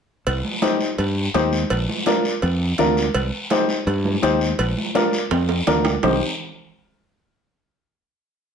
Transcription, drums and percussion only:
0.26 cowbell loud
0.26 high conga soft
0.26 long guiro medium
0.44 high conga medium
0.62 cowbell medium
0.62 high conga loud
0.62 short guiro medium
0.80 short guiro medium
0.98 cowbell medium
0.98 high conga soft
0.98 long guiro medium
1.34 cowbell medium
1.34 high conga medium
1.34 low timbale medium
1.34 short guiro medium
1.53 short guiro medium
1.70 cowbell loud
1.70 high conga soft
1.70 long guiro medium
1.89 high conga medium
2.06 cowbell medium
2.06 high conga medium
2.06 short guiro medium
2.25 short guiro medium
2.42 cowbell medium
2.42 high conga soft
2.42 long guiro medium
2.78 cowbell medium
2.78 high conga medium
2.78 low conga medium
2.78 short guiro medium
2.97 short guiro medium
3.14 cowbell loud
3.14 high conga soft
3.14 long guiro medium
3.50 cowbell medium
3.50 high conga loud
3.50 short guiro medium
3.69 short guiro medium
3.87 cowbell medium
3.87 high conga soft
3.87 long guiro medium
4.05 high conga medium
4.23 cowbell medium
4.23 high conga medium
4.23 short guiro medium
4.41 short guiro medium
4.59 cowbell loud
4.59 high conga soft
4.59 long guiro medium
4.77 high conga medium
4.95 cowbell medium
4.95 high conga medium
4.95 short guiro medium
5.13 short guiro medium
5.31 cowbell medium
5.31 high conga soft
5.31 high timbale loud
5.31 long guiro medium
5.49 high timbale medium
5.67 cowbell medium
5.67 high conga medium
5.67 low conga medium
5.67 low timbale medium
5.67 short guiro medium
5.85 low timbale medium
5.85 short guiro medium
6.03 low conga medium
6.03 low timbale loud
6.03 long guiro medium

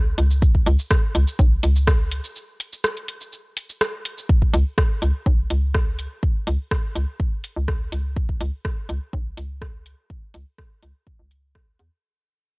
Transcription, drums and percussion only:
0.18 closed hi-hat medium
0.31 shaker medium
0.42 kick loud
0.42 shaker soft
0.55 kick medium
0.66 closed hi-hat medium
0.79 shaker medium
0.91 kick loud
0.91 cross-stick loud
0.91 closed hi-hat soft
0.91 shaker soft
1.15 closed hi-hat medium
1.27 shaker medium
1.39 kick loud
1.39 shaker soft
1.63 closed hi-hat medium
1.76 shaker medium
1.87 kick loud
1.87 cross-stick loud
1.87 shaker soft
2.12 closed hi-hat medium
2.24 shaker medium
2.36 shaker soft
2.60 closed hi-hat medium
2.73 shaker medium
2.84 cross-stick medium
2.84 closed hi-hat soft
2.84 shaker soft
2.97 closed hi-hat soft
3.08 closed hi-hat medium
3.21 shaker medium
3.33 shaker soft
3.57 closed hi-hat medium
3.69 shaker medium
3.81 cross-stick loud
3.81 shaker soft
4.05 closed hi-hat medium
4.18 shaker medium
4.29 kick loud
4.42 kick medium
4.54 closed hi-hat medium
4.78 kick loud
4.78 cross-stick loud
5.02 closed hi-hat medium
5.26 kick loud
5.50 closed hi-hat medium
5.74 kick loud
5.74 cross-stick medium
5.99 closed hi-hat medium
6.23 kick loud
6.47 closed hi-hat medium
6.71 kick loud
6.71 cross-stick loud
6.96 closed hi-hat medium
7.20 kick loud
7.44 closed hi-hat medium
7.68 kick loud
7.68 cross-stick medium
7.92 closed hi-hat medium
8.16 kick loud
8.29 kick medium
8.41 closed hi-hat medium
8.65 kick loud
8.65 cross-stick medium
8.89 closed hi-hat medium
9.13 kick loud
9.37 closed hi-hat medium
9.62 kick loud
9.62 cross-stick medium
9.86 closed hi-hat medium
10.10 kick loud
10.34 closed hi-hat medium
10.58 kick loud
10.58 cross-stick medium
10.83 closed hi-hat medium
11.07 kick loud
11.31 closed hi-hat medium
11.55 kick loud
11.55 cross-stick medium
11.79 closed hi-hat medium

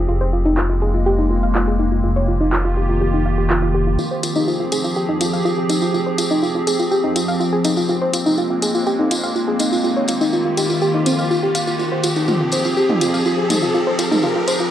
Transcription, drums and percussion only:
0.57 clap loud
1.55 clap loud
2.52 clap medium
3.50 clap loud
3.99 tambourine soft
4.23 closed hi-hat loud
4.23 tambourine medium
4.36 tambourine medium
4.48 tambourine soft
4.72 closed hi-hat medium
4.72 tambourine medium
4.84 tambourine medium
4.96 tambourine soft
5.21 closed hi-hat loud
5.21 tambourine medium
5.33 tambourine soft
5.45 tambourine soft
5.69 closed hi-hat medium
5.69 tambourine medium
5.82 tambourine soft
5.94 tambourine soft
6.18 closed hi-hat loud
6.18 tambourine medium
6.31 tambourine soft
6.43 tambourine soft
6.67 closed hi-hat medium
6.67 tambourine medium
6.79 tambourine soft
6.92 tambourine soft
7.16 closed hi-hat loud
7.16 tambourine medium
7.28 tambourine soft
7.41 tambourine soft
7.64 closed hi-hat medium
7.64 tambourine loud
7.77 tambourine medium
7.89 tambourine soft
8.13 closed hi-hat loud
8.13 tambourine medium
8.26 tambourine medium
8.37 tambourine soft
8.62 closed hi-hat medium
8.62 tambourine loud
8.75 tambourine medium
8.87 tambourine soft
9.11 closed hi-hat loud
9.11 tambourine medium
9.24 tambourine medium
9.36 tambourine soft
9.59 closed hi-hat medium
9.59 tambourine loud
9.73 tambourine medium
9.84 tambourine soft
10.08 closed hi-hat loud
10.08 tambourine medium
10.21 tambourine medium
10.33 tambourine soft
10.57 closed hi-hat loud
10.57 tambourine loud
10.70 tambourine medium
10.81 tambourine soft
11.06 closed hi-hat loud
11.06 tambourine medium
11.19 tambourine medium
11.31 tambourine soft
11.55 closed hi-hat medium
11.55 tambourine medium
11.67 tambourine medium
11.79 tambourine soft
12.03 closed hi-hat loud
12.03 tambourine medium
12.16 tambourine medium
12.28 mid tom medium
12.28 tambourine soft
12.52 closed hi-hat medium
12.52 tambourine medium
12.65 tambourine medium
12.77 tambourine soft
12.89 mid tom medium
13.01 closed hi-hat loud
13.01 tambourine medium
13.14 tambourine medium
13.26 tambourine soft
13.50 closed hi-hat medium
13.50 mid tom medium
13.50 tambourine medium
13.62 tambourine medium
13.75 tambourine soft
13.99 closed hi-hat loud
13.99 tambourine medium
14.11 mid tom medium
14.11 tambourine medium
14.22 tambourine soft
14.48 closed hi-hat medium
14.48 tambourine medium
14.60 tambourine soft

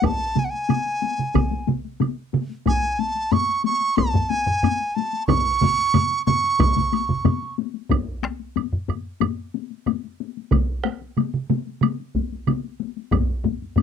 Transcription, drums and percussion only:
0.03 taiko loud
0.03 taiko high medium
0.03 high woodblock soft
0.19 taiko high soft
0.35 taiko mid medium
0.35 taiko high medium
0.53 taiko high soft
0.69 taiko mid medium
0.69 taiko high medium
0.69 high woodblock soft
0.86 taiko high soft
1.02 taiko high soft
1.18 taiko mid medium
1.18 taiko high soft
1.35 taiko medium
1.35 taiko mid medium
1.35 taiko high medium
1.35 high woodblock medium
1.51 taiko high soft
1.67 taiko mid medium
1.67 taiko high soft
1.85 taiko high soft
2.00 taiko mid medium
2.00 taiko high medium
2.00 high woodblock soft
2.33 taiko mid medium
2.33 taiko high soft
2.49 taiko high soft
2.66 taiko medium
2.66 taiko high medium
2.66 high woodblock soft
2.82 taiko high soft
2.99 taiko high medium
3.15 taiko high soft
3.32 taiko low-mid medium
3.32 taiko high medium
3.32 high woodblock soft
3.49 taiko high soft
3.64 taiko high medium
3.81 taiko high soft
3.97 taiko loud
3.97 taiko high medium
3.97 high woodblock medium
4.14 taiko low-mid loud
4.14 taiko high soft
4.31 taiko high medium
4.46 taiko low-mid loud
4.63 taiko low-mid medium
4.63 taiko high medium
4.63 high woodblock soft
4.80 taiko high soft
4.96 taiko high medium
5.13 taiko high soft
5.28 taiko loud
5.28 taiko low-mid medium
5.28 taiko mid loud
5.28 taiko high medium
5.28 high woodblock medium
5.46 taiko high soft
5.61 taiko low-mid medium
5.61 taiko mid loud
5.61 taiko high medium
5.78 taiko high soft
5.94 taiko low-mid medium
5.94 taiko mid loud
5.94 taiko high medium
5.94 high woodblock soft
6.11 taiko high soft
6.27 taiko low-mid medium
6.27 taiko mid loud
6.27 taiko high medium
6.44 taiko high soft
6.59 taiko loud
6.59 taiko low-mid medium
6.59 taiko mid medium
6.59 taiko high medium
6.59 high woodblock medium
6.76 taiko low-mid medium
6.76 taiko mid medium
6.76 taiko high medium
6.93 taiko high medium
6.93 high woodblock soft
7.09 taiko low-mid medium
7.09 taiko mid medium
7.09 taiko high soft
7.25 taiko low-mid loud
7.25 taiko mid medium
7.25 taiko high medium
7.25 high woodblock soft
7.42 taiko high soft
7.58 taiko high medium
7.74 taiko high soft
7.90 taiko medium
7.90 taiko low-mid loud
7.90 taiko high medium
7.90 high woodblock medium
8.06 taiko high soft
8.23 taiko rim medium
8.23 taiko high soft
8.40 taiko high soft
8.56 taiko low-mid medium
8.56 taiko high medium
8.56 high woodblock soft
8.73 taiko low-mid medium
8.88 taiko low-mid medium
8.88 taiko high soft
8.88 high woodblock soft
9.20 taiko low-mid medium
9.20 taiko high medium
9.20 high woodblock medium
9.37 taiko high soft
9.54 taiko high soft
9.70 taiko high soft
9.86 taiko low-mid loud
9.86 taiko high medium
9.86 high woodblock soft
10.04 taiko high soft
10.20 taiko high soft
10.37 taiko high soft
10.51 taiko loud
10.51 taiko mid medium
10.51 taiko high medium
10.51 high woodblock medium
10.69 taiko high soft
10.84 taiko rim medium
10.84 taiko high soft
11.01 taiko high soft
11.17 taiko mid medium
11.17 taiko high medium
11.17 high woodblock soft
11.34 taiko mid medium
11.50 taiko mid loud
11.50 taiko high medium
11.67 taiko high soft
11.81 taiko mid medium
11.81 taiko high medium
11.81 high woodblock medium
12.00 taiko high soft
12.15 taiko medium
12.15 taiko high medium
12.32 taiko high soft
12.47 taiko mid medium
12.47 taiko high medium
12.47 high woodblock soft
12.64 taiko high soft
12.80 taiko high medium
12.97 taiko high soft
13.11 taiko loud
13.11 taiko low-mid medium
13.11 taiko high medium
13.11 high woodblock medium
13.29 taiko high soft
13.44 taiko low-mid medium
13.44 taiko high medium
13.62 taiko high soft
13.76 taiko low-mid medium
13.76 taiko high medium
13.76 high woodblock soft

